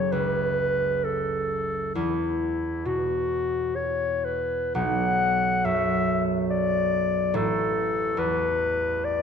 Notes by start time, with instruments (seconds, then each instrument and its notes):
Already playing: harp F#1 A3 C#4 F#4, clarinet C#5
0.12 harp C#2, clarinet B4
1.04 clarinet A4
1.95 harp E2, clarinet E4
2.85 harp B2, clarinet F#4
3.75 clarinet C#5
4.25 clarinet B4
4.75 harp B1, clarinet F#5
5.65 harp F#2, clarinet E5
6.50 clarinet D5
7.34 harp A1, clarinet A4
8.17 harp E2, clarinet B4
9.04 clarinet D5